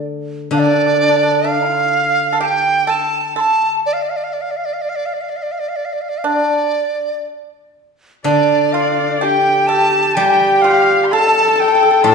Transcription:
0.00 0.50 D3 medium
0.51 3.35 D3 soft
0.51 0.59 D4 medium
0.51 0.60 F5 medium
0.59 0.64 D4 soft
0.59 1.50 D5 medium
0.65 0.72 D4 soft
0.73 0.79 D4 soft
0.80 0.85 D4 soft
0.86 0.93 D4 soft
0.94 1.01 D4 soft
1.02 1.08 D4 soft
1.09 1.15 D4 soft
1.16 1.22 D4 soft
1.23 1.30 D4 soft
1.31 1.39 D4 soft
1.44 1.71 D4 medium
1.49 2.41 F5 medium
1.71 2.29 F4 medium
2.33 2.40 A4 medium
2.40 2.85 G4 medium
2.40 2.46 A5 medium
2.45 2.92 G5 medium
2.87 3.32 A4 medium
2.87 3.37 A5 medium
3.36 3.81 A4 medium
3.36 3.42 C6 medium
3.41 3.81 A5 medium
3.86 3.95 D5 medium
3.93 4.04 F5 medium
4.02 4.11 D5 medium
4.10 4.18 F5 medium
4.17 4.25 D5 medium
4.24 4.35 F5 medium
4.33 4.43 D5 medium
4.41 4.52 F5 medium
4.51 4.58 D5 medium
4.57 4.67 F5 medium
4.65 4.75 D5 medium
4.73 4.83 F5 medium
4.82 4.91 D5 medium
4.89 4.97 F5 medium
4.96 5.07 D5 medium
5.06 5.15 F5 medium
5.13 5.23 D5 soft
5.21 5.31 F5 medium
5.29 5.38 D5 medium
5.36 5.44 F5 medium
5.43 5.53 D5 medium
5.52 5.61 F5 medium
5.59 5.70 D5 medium
5.69 5.77 F5 medium
5.76 5.87 D5 medium
5.85 5.94 F5 medium
5.93 6.03 D5 medium
6.01 6.11 F5 medium
6.09 6.20 D5 medium
6.18 6.27 F5 medium
6.24 7.22 D4 medium
6.24 7.26 D5 medium
8.24 11.12 D3 medium
8.24 8.70 D4 medium
8.24 9.24 D4 medium
8.24 8.74 D5 medium
8.24 9.23 D5 medium
8.73 9.19 F4 medium
8.73 9.21 F5 medium
9.21 9.66 G4 medium
9.21 10.18 G4 medium
9.21 9.71 G5 medium
9.21 9.69 G5 medium
9.21 9.26 A5 medium
9.67 10.14 A4 medium
9.67 10.17 A5 medium
9.67 10.19 A5 medium
10.15 12.15 G3 medium
10.15 10.62 G4 medium
10.15 11.14 G4 medium
10.15 10.63 G5 medium
10.15 10.66 G5 medium
10.62 11.08 F4 medium
10.62 11.09 F5 medium
10.62 11.06 F5 medium
11.05 11.14 C6 medium
11.09 12.05 A4 medium
11.09 11.19 A4 medium
11.09 11.61 A5 medium
11.09 11.56 A5 loud
11.09 11.14 C6 loud
11.20 11.26 A4 medium
11.27 11.32 A4 medium
11.33 11.40 A4 soft
11.41 11.47 A4 medium
11.48 11.54 A4 soft
11.56 11.60 A4 medium
11.56 11.61 A5 medium
11.60 11.67 A4 soft
11.60 12.07 G5 medium
11.60 12.05 G5 medium
11.68 11.74 A4 medium
11.75 11.82 A4 soft
11.83 11.90 A4 medium
11.91 11.98 A4 medium
12.03 12.15 A2 medium
12.03 12.11 A4 medium
12.03 12.15 A4 medium
12.03 12.15 A5 medium
12.03 12.09 C6 medium
12.08 12.15 A5 loud

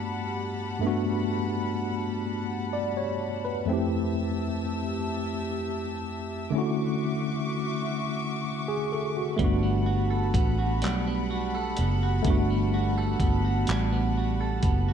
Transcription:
0.00 0.77 G2 medium
0.00 3.64 G3 medium
0.00 0.78 A3 medium
0.00 0.79 B3 medium
0.00 0.80 D4 medium
0.00 0.81 F#4 medium
0.00 3.64 F#5 medium
0.00 3.64 A5 medium
0.00 3.64 B5 medium
0.79 3.62 G2 medium
0.79 3.63 A3 medium
0.79 3.64 B3 medium
0.85 3.65 D4 medium
0.85 3.66 F#4 medium
2.73 2.95 D5 medium
2.97 3.42 C#5 medium
3.45 3.90 B4 medium
3.65 6.48 F2 medium
3.65 6.49 A3 medium
3.65 6.50 C4 medium
3.65 6.51 G4 medium
3.65 6.51 E5 medium
3.65 6.50 A5 medium
3.65 6.50 E6 loud
3.71 6.51 E4 medium
3.71 6.52 G4 medium
6.50 9.34 D3 medium
6.50 9.35 A3 medium
6.50 9.35 C#4 medium
6.50 9.36 F#4 medium
6.50 9.36 E5 medium
6.50 9.36 C#6 medium
6.50 9.37 D6 loud
6.56 9.36 E4 medium
6.56 8.42 F#4 medium
8.68 8.91 G#4 medium
8.92 9.15 A4 medium
9.17 9.43 F#4 medium
9.36 10.31 G1 loud
9.36 14.93 G3 medium
9.36 10.82 G3 medium
9.36 12.20 A3 medium
9.36 12.21 B3 medium
9.36 14.93 F#5 medium
9.36 14.93 A5 medium
9.36 14.93 B5 medium
9.36 kick loud
9.36 closed hi-hat medium
9.41 12.22 D4 medium
9.41 12.23 F#4 medium
9.63 10.33 B3 medium
9.86 10.57 F#4 medium
10.10 11.54 A4 medium
10.34 10.83 A1 medium
10.34 11.06 B3 medium
10.34 kick medium
10.34 closed hi-hat medium
10.59 11.29 F#4 medium
10.82 11.80 B1 medium
10.82 12.26 G3 medium
10.82 clap loud
10.82 closed hi-hat medium
11.07 11.77 B3 medium
11.31 12.02 F#4 medium
11.55 12.97 A4 medium
11.77 12.22 F#1 medium
11.77 12.49 B3 medium
11.77 closed hi-hat medium
12.03 12.73 F#4 medium
12.22 13.16 G1 loud
12.22 14.93 A3 medium
12.22 14.93 B3 medium
12.22 kick loud
12.22 closed hi-hat medium
12.27 13.68 G3 medium
12.27 14.93 D4 medium
12.27 14.93 F#4 medium
12.50 13.20 B3 medium
12.74 13.43 F#4 medium
12.98 14.40 A4 medium
13.20 13.64 G1 loud
13.20 13.91 B3 medium
13.20 kick medium
13.20 closed hi-hat medium
13.45 14.16 F#4 medium
13.67 14.59 A1 medium
13.67 14.93 G3 medium
13.67 clap loud
13.67 closed hi-hat medium
13.93 14.64 B3 medium
14.17 14.87 F#4 medium
14.41 14.93 A4 medium
14.63 14.93 F#1 loud
14.63 14.93 B3 medium
14.63 kick medium
14.63 closed hi-hat medium
14.89 14.93 F#4 medium

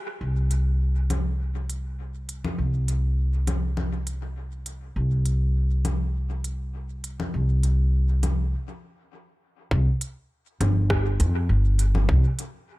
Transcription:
0.21 2.56 C2 medium
0.51 closed hi-hat soft
1.10 closed hi-hat soft
1.10 low conga medium
1.70 closed hi-hat soft
2.29 closed hi-hat soft
2.44 low conga medium
2.58 4.93 C2 medium
2.88 closed hi-hat soft
3.47 closed hi-hat soft
3.47 low conga medium
3.77 low conga medium
4.07 closed hi-hat soft
4.66 closed hi-hat soft
4.96 7.31 C2 medium
5.26 closed hi-hat soft
5.85 closed hi-hat soft
5.85 low conga medium
6.44 closed hi-hat soft
7.04 closed hi-hat soft
7.20 low conga medium
7.34 8.53 C2 medium
7.63 closed hi-hat soft
8.23 closed hi-hat soft
8.23 low conga medium
9.71 9.85 C2 loud
9.71 kick loud
10.01 closed hi-hat medium
10.60 11.21 G1 loud
10.60 closed hi-hat medium
10.60 low conga medium
10.90 kick loud
10.90 cross-stick medium
11.20 11.46 F2 loud
11.20 closed hi-hat medium
11.49 12.06 G1 medium
11.79 closed hi-hat medium
11.95 low conga medium
12.09 12.23 C2 loud
12.09 kick loud
12.39 closed hi-hat medium

